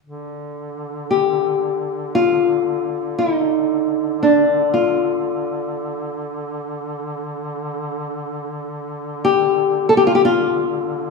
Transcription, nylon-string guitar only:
1.11 2.15 G4 medium
2.15 3.24 F4 medium
3.19 4.19 D#4 medium
4.23 4.76 D4 medium
4.74 6.21 F4 medium
9.25 9.89 G4 medium
9.89 9.97 A4 medium
9.97 10.06 G4 medium
10.07 10.15 F4 medium
10.15 10.24 G4 medium
10.25 11.10 F4 medium

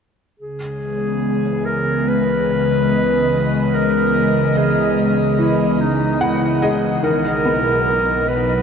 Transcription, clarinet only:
0.40 1.67 G#4 medium
1.65 2.10 A#4 medium
2.08 3.76 B4 loud
3.74 4.59 A#4 medium
4.57 5.12 G#4 medium
5.39 5.82 E4 medium
5.80 6.23 D#4 medium
6.21 6.83 E4 medium
7.04 8.30 A#4 loud
8.28 8.62 B4 medium

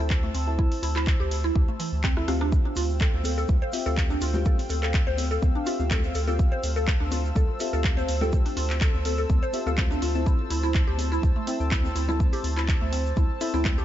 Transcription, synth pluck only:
0.23 0.33 A3 medium
0.34 0.47 C4 medium
0.59 0.70 E4 medium
0.83 0.90 E4 medium
0.96 1.06 E4 loud
1.20 1.30 G4 loud
1.44 1.54 E4 loud
1.68 1.78 A3 medium
1.79 1.91 E3 medium
2.04 2.15 C4 medium
2.17 2.27 E4 medium
2.28 2.40 C4 loud
2.41 2.51 D4 loud
2.65 2.75 D4 medium
2.76 2.89 F4 medium
3.01 3.12 A4 medium
3.25 3.32 A4 medium
3.38 3.48 A4 loud
3.62 3.72 C5 loud
3.86 3.96 A4 loud
4.10 4.20 D4 medium
4.22 4.34 F4 medium
4.46 4.57 A4 medium
4.70 4.77 A4 medium
4.83 4.93 A4 loud
5.07 5.17 C5 loud
5.31 5.41 A4 loud
5.55 5.65 D4 medium
5.66 5.79 F4 medium
5.91 6.02 A4 medium
6.15 6.22 A4 medium
6.27 6.38 A4 loud
6.52 6.62 C5 loud
6.76 6.86 A4 loud
7.00 7.10 D4 medium
7.12 7.24 F4 medium
7.36 7.47 A4 medium
7.60 7.67 A4 medium
7.73 7.84 A4 loud
7.97 8.07 C5 loud
8.21 8.31 A4 loud
8.46 8.56 D4 medium
8.57 8.69 F4 medium
8.81 8.93 A4 medium
9.05 9.12 A4 medium
9.18 9.29 A4 loud
9.43 9.53 C5 loud
9.67 9.77 A4 loud
9.91 10.01 D4 medium
10.02 10.14 F4 medium
10.26 10.38 E4 medium
10.50 10.57 E4 medium
10.63 10.74 E4 loud
10.87 10.98 G4 loud
11.12 11.22 E4 loud
11.36 11.46 A3 medium
11.47 11.60 C4 medium
11.71 11.83 E4 medium
11.96 12.03 E4 medium
12.09 12.19 E4 loud
12.33 12.43 G4 loud
12.57 12.67 E4 loud
12.81 12.91 A3 medium
12.93 13.05 C4 medium
13.17 13.28 E4 medium
13.41 13.48 E4 medium
13.54 13.64 E4 loud
13.78 13.85 G4 loud

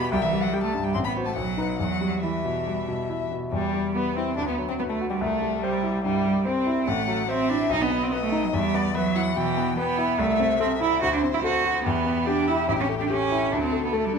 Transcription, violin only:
0.00 0.10 B5 medium
0.11 0.23 G5 medium
0.22 0.44 E5 medium
0.42 0.55 F#5 soft
0.53 0.63 G5 medium
0.63 0.85 A5 soft
0.84 0.93 G5 soft
0.94 0.98 C6 medium
1.04 1.12 B5 soft
1.25 1.35 A5 soft
1.36 1.78 F#5 soft
1.78 2.22 F#5 soft
2.23 3.29 E5 soft
3.53 3.92 G3 medium
3.95 4.15 B3 medium
4.16 4.36 C4 soft
4.36 4.47 D4 medium
4.47 4.55 B3 soft
4.69 4.73 C4 soft
4.80 4.84 B3 soft
4.89 4.97 A3 soft
5.10 5.14 G3 soft
5.19 5.64 A3 medium
5.63 6.04 G3 medium
6.04 6.45 G3 medium
6.46 6.87 C4 medium
6.88 7.31 F#5 soft
7.29 7.72 E5 medium
7.71 8.11 D#5 medium
8.11 8.55 D#5 medium
8.54 8.76 E5 medium
8.74 8.96 D5 medium
8.95 9.17 E5 medium
9.16 9.38 F#5 medium
9.36 9.77 G5 medium
9.78 10.18 G5 soft
10.20 10.98 E5 medium
11.02 11.81 C5 medium
11.85 13.48 G4 medium
13.52 14.19 A4 medium

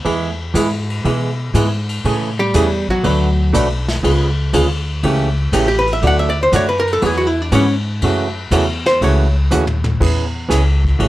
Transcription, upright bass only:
0.05 0.53 E2 medium
0.54 1.03 G#2 medium
1.05 1.53 B2 medium
1.54 2.03 G#2 medium
2.04 2.53 A2 medium
2.54 3.03 E2 medium
3.05 3.53 D2 medium
3.54 4.03 B1 loud
4.04 4.52 C#2 medium
4.53 5.02 D2 medium
5.03 5.52 C#2 medium
5.52 6.01 A1 medium
6.02 6.51 D2 medium
6.52 7.01 F#2 loud
7.03 7.51 E2 medium
7.52 8.00 G#2 medium
8.02 8.50 F#2 medium
8.51 8.99 E2 medium
9.01 9.49 C#2 medium
9.51 9.99 D#2 medium
10.01 10.49 E2 medium
10.50 10.98 C#2 medium
11.00 11.08 A1 medium

